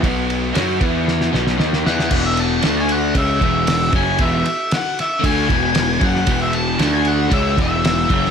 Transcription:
<<
  \new Staff \with { instrumentName = "Lead electric guitar" } { \time 4/4 \key e \mixolydian \tempo 4 = 115 r2. r8 fis''8~ | fis''16 e''16 a''8. gis''16 fis''8 e''4. gis''8 | e''8 e''8 fis''8 e''8 gis''4. fis''8~ | fis''16 e''16 a''8. gis''16 fis''8 e''8 e''4. | }
  \new Staff \with { instrumentName = "Overdriven electric guitar" } { \clef bass \time 4/4 \key e \mixolydian <b, fis b>4 <fis cis' fis'>8 <e b e'>4 <b, fis b>8 <dis ais dis'>8 <e b e'>8 | <e, b, e>4 <d a d'>4 <cis gis cis'>8 <e, b, e>4 <fis, cis fis>8 | <e, b, e>8 r4. <d a d'>8 <e, b, e>4 <fis, cis fis>8 | <e, b, e>4 <d a d'>4 <cis gis cis'>8 <e, b, e>4 <fis, cis fis>8 | }
  \new Staff \with { instrumentName = "Picked electric bass" } { \clef bass \time 4/4 \key e \mixolydian b,,4 fis,8 e,4 b,,8 dis,8 e,8 | e,,4 d,4 cis,8 e,,4 fis,,8 | e,,8 r4. d,8 e,,4 fis,,8 | e,,4 d,4 cis,8 e,,4 fis,,8 | }
  \new DrumStaff \with { instrumentName = "Drums" } \drummode { \time 4/4 <bd cymr>8 cymr8 <cymr sn>8 <bd cymr>8 sn16 sn16 sn16 sn16 sn16 sn16 sn16 sn16 | <cymc bd>8 cymr8 <cymr sn>8 cymr8 <bd cymr>8 <bd cymr>8 <cymr sn>8 <bd cymr>8 | <bd cymr>8 cymr8 <cymr sn>8 <cymr sn>8 <bd cymr>8 <bd cymr>8 <cymr sn>8 <bd cymr>16 sn16 | <bd cymr>8 cymr8 <cymr sn>8 cymr8 <bd cymr>8 <bd cymr>8 <cymr sn>8 <bd cymr>16 sn16 | }
>>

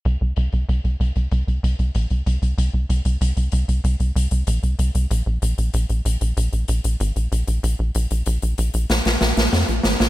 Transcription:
<<
  \new Staff \with { instrumentName = "Analog synth bass" } { \clef bass \time 4/4 \key bes \dorian \tempo 4 = 95 c,16 c,16 c,16 c,16 c,16 c,16 c,16 c,16 c,16 c,16 c,16 c,16 bes,,16 c,16 c,16 c,16 | c,16 c,16 c,16 c,16 c,16 c,16 c,16 c,16 c,16 c,16 c,16 c,16 bes,,16 c,16 c,16 c,16 | bes,,16 bes,,16 bes,,16 bes,,16 bes,,16 bes,,16 bes,,16 bes,,16 bes,,16 bes,,16 bes,,16 bes,,16 aes,,16 bes,,16 bes,,16 bes,,16 | bes,,16 bes,,16 bes,,16 bes,,16 bes,,16 bes,,16 bes,,16 bes,,16 bes,,16 bes,,16 bes,,16 bes,,16 f,16 bes,,16 aes,,16 bes,,16 | }
  \new DrumStaff \with { instrumentName = "Drums" } \drummode { \time 4/4 hh8 hh16 hh16 hh16 hh16 hh16 hh16 hh16 hh16 hh16 hh16 hh16 hh16 hh16 hh16 | hh8 hh16 hh16 hh16 hh16 hh16 hh16 hh16 hh16 hh16 hh16 hh16 hh16 hh16 hh16 | hh8 hh16 hh16 hh16 hh16 hh16 hh16 hh16 hh16 hh16 hh16 hh16 hh16 hh16 hh16 | hh8 hh16 hh16 hh16 hh16 hh16 hh16 <hh sn>16 <hh sn>16 <hh sn>16 <hh sn>16 <hh sn>16 hh16 <hh sn>16 <hh sn>16 | }
>>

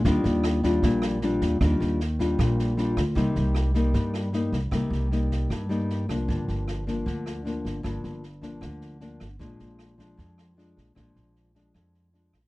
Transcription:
<<
  \new Staff \with { instrumentName = "Nylon-string guitar" } { \clef bass \time 4/4 \key ees \major \tempo 4 = 154 << { <g d' f'>4. <g d' f'>4. <g d' f'>4 | <g d' f'>4 r8 <g d' f'>4. <g d' f'>8 r8 | <g bes ees'>4. <g bes ees'>4. <g bes ees'>8 r8 | <g bes ees'>4 <g bes ees'>4. <g bes ees'>4 <f bes d'>8~ |
<f bes d'>4. <f bes d'>4. <f bes d'>4 | <f bes d'>4 r8 <f bes d'>4. <f bes d'>8 r8 | <f aes d'>4. <f aes d'>4. <f aes d'>4 | <f aes d'>4. <f aes d'>4. <f aes d'>8 r8 | } \\ { ees2 bes,2 | ees2 bes,2 | c2 g,2 | c2 g,2 |
g,2 d2 | g,2 d2 | bes,2 f,2 | bes,2 f,2 | } >> }
  \new Staff \with { instrumentName = "Upright bass" } { \clef bass \time 4/4 \key ees \major ees,8 ees,4. bes,,4. ees,8 | ees,8 ees,4. bes,,4. d,8 | c,8 c,4. g,4. c,8 | c,8 c,4. g,4. c,8 |
g,,8 g,,4. d,4. g,,8 | g,,8 g,,4. d,4. g,,8 | bes,,8 bes,,4. f,4. bes,,8 | bes,,8 bes,,4. f,4. bes,,8 | }
  \new DrumStaff \with { instrumentName = "Drums" } \drummode { \time 4/4 <bd sn>8 sn8 <ss sn>8 <bd sn>8 <bd sn>8 <ss sn>8 sn8 <bd sn>8 | <bd ss sn>8 sn8 sn8 <bd sn>8 <bd ss sn>8 sn8 sn8 <bd ss sn>8 | <bd sn>8 sn8 <ss sn>8 <bd sn>8 <bd sn>8 <ss sn>8 sn8 <bd sn>8 | <bd ss sn>8 sn8 sn8 <bd sn>8 <bd ss sn>8 sn8 sn8 <bd ss sn>8 |
<bd sn>8 sn8 <ss sn>8 <bd sn>8 <bd sn>8 <ss sn>8 sn8 <bd sn>8 | <bd ss sn>8 sn8 sn8 <bd sn>8 <bd ss sn>8 sn8 sn8 <bd ss sn>8 | <bd sn>8 sn8 <ss sn>8 <bd sn>8 <bd sn>8 <ss sn>8 sn8 <bd sn>8 | <bd ss sn>8 sn8 sn8 <bd sn>8 <bd ss sn>8 sn8 sn8 <bd ss sn>8 | }
>>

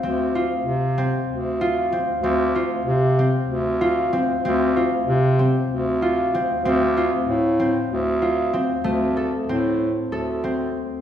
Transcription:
<<
  \new Staff \with { instrumentName = "Harp" } { \time 7/8 \key d \minor \tempo 4 = 95 c'8 f'4 c'4 f'8 c'8 | c'8 f'4 c'4 f'8 c'8 | c'8 f'4 c'4 f'8 c'8 | c'8 f'4 c'4 f'8 c'8 |
a8 a'8 c'4 a'8 c'4 | }
  \new Staff \with { instrumentName = "Bass clarinet" } { \clef bass \time 7/8 \key d \minor d,4 c4 d,4. | d,4 c4 d,4. | d,4 c4 d,4. | d,4 a,4 d,4. |
d,4 a,4 d,4. | }
>>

